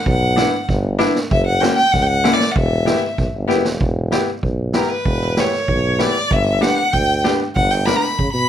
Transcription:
0.06 0.44 B1 loud
0.06 0.66 F#5 medium
0.06 kick medium
0.36 0.53 B3 medium
0.36 0.52 D4 medium
0.36 0.53 E4 medium
0.36 snare medium
0.69 1.06 G1 loud
0.69 kick medium
0.69 snare soft
0.98 1.15 B3 medium
0.98 1.15 D4 medium
0.98 1.15 E4 loud
0.98 snare medium
1.16 snare medium
1.31 1.68 F#1 loud
1.31 1.45 E5 medium
1.31 kick medium
1.47 1.62 F#5 medium
1.60 1.77 A#3 medium
1.60 1.77 C#4 medium
1.60 1.78 F#4 medium
1.60 1.75 G5 medium
1.60 snare medium
1.76 1.94 G5 loud
1.92 2.31 C#2 medium
1.92 2.04 F#5 medium
1.92 kick medium
1.92 snare soft
2.03 2.08 G5 medium
2.07 2.35 F#5 loud
2.24 2.40 A#3 medium
2.24 2.40 C#4 medium
2.24 2.40 E4 medium
2.24 snare medium
2.34 2.53 D5 medium
2.40 snare medium
2.52 3.18 E5 medium
2.52 2.57 F#5 medium
2.52 kick medium
2.56 2.93 E1 loud
2.86 3.02 B3 medium
2.86 3.02 E4 medium
2.86 3.02 G4 medium
2.86 snare medium
3.18 3.27 B1 medium
3.18 kick medium
3.18 snare soft
3.35 3.49 G1 medium
3.48 3.64 F#1 medium
3.48 3.64 B3 medium
3.48 3.64 E4 medium
3.48 3.64 G4 medium
3.48 snare medium
3.65 3.80 E1 medium
3.65 snare medium
3.81 4.18 E1 loud
3.81 kick medium
4.11 4.27 B3 medium
4.11 4.27 E4 medium
4.11 4.28 G4 medium
4.11 snare medium
4.43 4.80 B1 medium
4.43 kick medium
4.73 4.90 B3 medium
4.73 4.90 E4 medium
4.73 4.90 G4 medium
4.73 4.91 A#4 medium
4.73 snare medium
4.89 5.41 B4 medium
5.05 5.43 E1 medium
5.05 kick medium
5.21 snare soft
5.37 5.53 B3 soft
5.37 5.53 E4 medium
5.37 5.53 G4 medium
5.37 6.03 C#5 medium
5.37 snare medium
5.53 snare soft
5.68 6.06 B1 loud
5.68 kick medium
5.99 6.15 B3 medium
5.99 6.15 E4 medium
5.99 6.15 G4 medium
5.99 6.34 D5 medium
5.99 snare medium
6.31 6.68 G1 loud
6.31 6.64 E5 medium
6.31 kick medium
6.61 6.77 B3 medium
6.61 6.77 D4 medium
6.61 6.77 G4 medium
6.61 6.94 F#5 medium
6.61 snare medium
6.93 7.31 D2 medium
6.93 7.24 G5 medium
6.93 kick medium
7.24 7.40 B3 medium
7.24 7.40 D4 medium
7.24 7.40 G4 medium
7.24 snare medium
7.55 7.93 G1 loud
7.55 7.73 F#5 loud
7.55 kick medium
7.71 7.87 G5 medium
7.71 snare soft
7.86 8.02 B3 medium
7.86 8.02 D4 medium
7.86 8.02 A#4 medium
7.86 7.97 B5 medium
7.86 snare medium
7.96 8.03 A#5 medium
8.02 8.32 B5 medium
8.02 snare soft
8.19 8.32 C#3 medium
8.19 kick medium
8.32 8.48 B2 medium
8.32 8.49 B5 medium

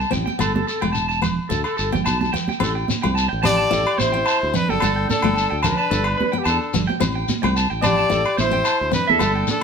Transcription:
0.01 shekere soft
0.11 0.25 A1 medium
0.11 0.28 C4 medium
0.11 0.24 G5 medium
0.11 low conga medium
0.11 shekere medium
0.26 0.36 G5 medium
0.26 high conga medium
0.26 shekere soft
0.39 0.63 G1 medium
0.39 0.56 B3 medium
0.39 0.51 A4 medium
0.39 low agogo medium
0.39 shekere medium
0.55 0.65 A4 medium
0.55 high conga medium
0.67 0.79 A4 medium
0.67 shekere medium
0.81 1.38 E1 medium
0.81 0.99 A3 medium
0.81 0.92 G5 medium
0.81 low agogo medium
0.93 1.05 A5 medium
0.93 shekere medium
1.09 1.19 A5 medium
1.09 shekere soft
1.22 1.39 B3 medium
1.22 low conga medium
1.22 low agogo medium
1.22 shekere medium
1.49 1.63 D2 medium
1.49 1.61 A4 medium
1.49 muted steel-string acoustic guitar stroke medium
1.49 shekere medium
1.64 1.75 A4 medium
1.64 low agogo medium
1.64 shekere soft
1.77 2.01 G1 medium
1.77 1.89 A4 medium
1.77 shekere medium
1.92 2.09 B3 medium
1.92 2.03 G5 medium
1.92 high conga medium
1.92 low conga medium
1.92 shekere soft
2.05 2.29 B1 medium
2.05 2.17 A5 medium
2.05 low agogo medium
2.05 shekere medium
2.21 2.31 A5 medium
2.21 high conga medium
2.21 shekere soft
2.33 2.50 B3 medium
2.33 2.45 G5 medium
2.33 low conga medium
2.33 shekere medium
2.48 2.58 G5 medium
2.48 high conga medium
2.48 shekere soft
2.60 2.84 A1 medium
2.60 2.77 C4 medium
2.60 2.72 A4 medium
2.60 low agogo medium
2.60 shekere medium
2.75 2.85 G5 medium
2.88 high conga medium
2.88 shekere loud
3.02 3.27 C2 medium
3.02 3.20 A3 medium
3.02 3.13 G5 medium
3.02 low agogo medium
3.15 3.27 A5 medium
3.15 shekere medium
3.29 3.65 A1 medium
3.29 3.39 G5 medium
3.43 3.60 C4 medium
3.43 4.03 G4 medium
3.43 4.00 D5 loud
3.43 3.55 A5 medium
3.43 low conga medium
3.43 low agogo medium
3.43 shekere loud
3.57 3.68 A5 medium
3.71 3.84 A1 medium
3.71 3.87 E4 medium
3.71 3.83 A4 medium
3.71 shekere medium
3.87 low agogo medium
3.98 4.22 A1 medium
3.98 4.57 E4 medium
3.98 4.10 C5 medium
3.98 4.57 C5 medium
3.98 high conga medium
3.98 shekere loud
4.12 4.30 C4 medium
4.12 4.23 G5 medium
4.26 4.38 A5 medium
4.26 low agogo medium
4.26 shekere medium
4.43 4.52 D2 medium
4.54 4.70 C4 medium
4.54 4.71 D4 medium
4.54 4.71 B4 loud
4.54 low conga medium
4.54 shekere medium
4.69 4.81 F#1 medium
4.69 5.10 D4 medium
4.69 5.09 A4 medium
4.69 4.79 G5 medium
4.69 high conga medium
4.80 5.05 G1 loud
4.80 4.98 B3 medium
4.80 4.92 A4 medium
4.80 low agogo medium
4.80 shekere medium
4.96 5.06 G5 medium
5.09 5.61 D4 medium
5.09 5.61 A4 medium
5.09 high conga medium
5.09 shekere medium
5.22 5.46 G1 medium
5.22 5.40 A3 medium
5.22 5.33 G5 medium
5.22 low agogo medium
5.36 5.48 A5 medium
5.36 shekere medium
5.50 5.74 D2 medium
5.50 5.60 G5 medium
5.63 5.80 A3 medium
5.63 6.40 B4 medium
5.63 5.75 A5 medium
5.63 low conga medium
5.63 low agogo medium
5.63 shekere medium
5.67 6.39 D4 medium
5.78 5.88 A5 medium
5.90 6.14 G1 medium
5.90 6.08 D4 medium
5.90 6.02 A4 medium
5.90 shekere medium
6.04 low agogo medium
6.17 6.30 B4 medium
6.17 high conga medium
6.32 6.50 B3 medium
6.32 6.42 G5 medium
6.37 6.48 B3 medium
6.37 6.48 G4 medium
6.44 6.58 E2 medium
6.44 6.57 A5 medium
6.44 low agogo medium
6.44 shekere medium
6.48 6.87 D4 medium
6.48 6.87 A4 medium
6.74 6.86 G1 medium
6.74 6.90 B3 medium
6.74 low conga medium
6.74 shekere loud
6.87 6.98 G5 medium
6.87 high conga medium
7.00 7.24 A1 loud
7.00 7.17 C4 medium
7.00 muted clean electric guitar stroke medium
7.00 low agogo medium
7.00 shekere medium
7.15 7.25 G5 medium
7.28 high conga medium
7.28 shekere loud
7.43 7.66 C2 loud
7.43 7.59 A3 medium
7.43 7.53 G5 medium
7.43 low agogo medium
7.57 7.68 A5 medium
7.57 shekere medium
7.70 8.04 A1 medium
7.70 7.80 G5 medium
7.82 7.99 C4 medium
7.82 8.36 G4 medium
7.82 8.34 D5 loud
7.82 7.95 A5 medium
7.82 low conga medium
7.82 low agogo medium
7.82 shekere medium
7.97 8.07 A5 medium
8.10 8.24 A1 medium
8.10 8.26 E4 medium
8.10 8.22 A4 medium
8.10 shekere medium
8.26 low agogo medium
8.37 8.61 A1 medium
8.37 8.90 E4 medium
8.37 8.49 C5 medium
8.37 8.89 C5 medium
8.37 high conga medium
8.37 shekere loud
8.51 8.68 C4 medium
8.51 8.63 G5 medium
8.65 8.77 A5 medium
8.65 low agogo medium
8.65 shekere medium
8.81 8.91 D2 medium
8.91 9.08 C4 medium
8.91 9.09 D4 medium
8.91 9.12 B4 medium
8.91 low conga medium
8.91 shekere medium
9.07 9.19 E2 medium
9.07 9.49 D4 medium
9.07 9.49 A4 medium
9.07 9.17 E5 medium
9.07 high conga medium
9.19 9.43 G1 loud
9.19 9.37 B3 medium
9.19 9.32 A4 medium
9.19 low agogo medium
9.19 shekere medium
9.35 9.45 G5 medium
9.47 9.63 D4 medium
9.47 9.63 A4 medium
9.47 high conga medium
9.47 shekere medium

